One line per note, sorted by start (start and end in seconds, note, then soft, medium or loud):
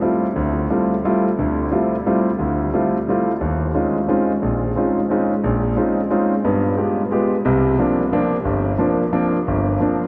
0.01 0.25 G3 soft
0.01 0.25 A3 soft
0.01 0.26 C4 soft
0.01 0.25 E4 soft
0.01 0.25 F4 soft
0.36 0.65 D2 medium
0.70 0.93 G3 soft
0.70 0.93 A3 soft
0.70 0.93 C4 soft
0.70 0.94 E4 soft
0.70 0.93 F4 soft
1.05 1.28 G3 soft
1.05 1.28 A3 soft
1.05 1.28 C4 soft
1.05 1.28 E4 soft
1.05 1.28 F4 medium
1.39 1.68 D2 medium
1.39 1.67 D3 medium
1.72 1.94 G3 soft
1.72 1.94 A3 soft
1.72 1.94 C4 soft
1.72 1.95 E4 soft
1.72 1.95 F4 soft
2.06 2.29 G3 medium
2.06 2.29 A3 soft
2.06 2.29 C4 soft
2.06 2.29 E4 soft
2.06 2.29 F4 medium
2.39 2.68 D2 medium
2.73 2.96 G3 soft
2.73 2.96 A3 soft
2.73 2.96 C4 soft
2.73 2.97 E4 soft
2.73 2.97 F4 soft
3.08 3.30 G3 soft
3.08 3.31 A3 soft
3.08 3.31 C4 soft
3.08 3.31 E4 soft
3.08 3.31 F4 medium
3.41 3.70 D#2 medium
3.74 3.97 G#3 soft
3.74 3.97 C4 soft
3.74 3.97 C#4 soft
3.74 3.97 D#4 soft
3.74 3.97 F4 soft
4.08 4.31 G#3 soft
4.08 4.31 C4 soft
4.08 4.31 C#4 soft
4.08 4.31 D#4 soft
4.08 4.31 F4 medium
4.42 4.71 A#1 medium
4.76 4.98 G#3 soft
4.76 4.98 C4 soft
4.76 4.99 C#4 soft
4.76 4.99 D#4 soft
4.76 4.99 F4 medium
5.10 5.33 G#3 medium
5.10 5.32 C4 soft
5.10 5.33 C#4 soft
5.10 5.33 D#4 soft
5.10 5.33 F4 medium
5.44 5.72 A#1 medium
5.76 5.99 G#3 soft
5.76 5.99 C4 soft
5.76 5.99 C#4 soft
5.76 6.00 D#4 soft
5.76 5.99 F4 soft
6.10 6.33 G#3 soft
6.10 6.33 C4 soft
6.10 6.33 C#4 soft
6.10 6.33 D#4 soft
6.10 6.33 F4 medium
6.45 6.73 G2 medium
6.45 6.73 B3 medium
6.77 7.00 G#3 soft
6.77 7.00 B3 soft
6.77 7.01 F4 soft
6.77 7.00 G4 soft
7.11 7.34 G#3 soft
7.11 7.34 B3 soft
7.11 7.34 F4 soft
7.11 7.34 G4 medium
7.45 7.74 C2 medium
7.45 7.74 C3 medium
7.79 8.01 F3 soft
7.79 8.02 A#3 soft
7.79 8.01 C4 soft
7.79 8.02 D4 medium
8.12 8.35 F3 medium
8.12 8.35 A#3 medium
8.12 8.35 C4 medium
8.12 8.35 D4 medium
8.45 8.74 G1 medium
8.78 9.02 F3 soft
8.78 9.02 A#3 soft
8.78 9.02 C4 soft
8.78 9.02 D4 medium
9.13 9.36 F3 medium
9.13 9.36 A#3 medium
9.13 9.36 C4 medium
9.13 9.36 D4 medium
9.48 9.76 G1 medium
9.80 10.03 F3 soft
9.80 10.03 A#3 soft
9.80 10.03 C4 soft
9.80 10.04 D4 medium